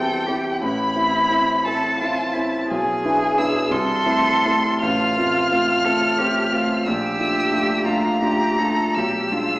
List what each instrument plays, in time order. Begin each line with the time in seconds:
Already playing: grand piano E2 C4 E4 G4, cello A4, violin G5
0.26 grand piano C4 E4 G4, cello G4
0.61 grand piano A1, cello E4, violin B5
0.96 grand piano C4 E4
1.30 grand piano C4 E4
1.65 grand piano C4 E4, cello A4, violin A5
1.99 grand piano C4 E4, cello F4
2.33 grand piano C4 E4, cello E4
2.68 grand piano B1, cello G#4, violin G#5
3.04 grand piano B3 D4 E4
3.38 grand piano B3 D4 E4, violin E6
3.71 grand piano C2, cello A4, violin C6
4.06 grand piano A3 C4 E4
4.45 grand piano A3 C4 E4
4.81 grand piano A1, cello F4, violin F6
5.17 grand piano A3 C4 F4
5.51 grand piano A3 C4 F4
5.85 grand piano A3 C4 F4, cello A4
6.18 grand piano A3 C4 F4, cello G4
6.53 grand piano A3 C4 F4, cello F4
6.86 grand piano A#1, cello G4, violin E6
7.19 grand piano A3 D4 F4
7.52 grand piano A3 D4 F4
7.86 grand piano A3 D4 F4, cello F4, violin A#5
8.22 grand piano A3 D4 F4, cello G4
8.58 grand piano A3 D4 F4, cello A4
8.95 grand piano B1, cello G4, violin E6
9.31 grand piano G#3 D4 F4, cello F4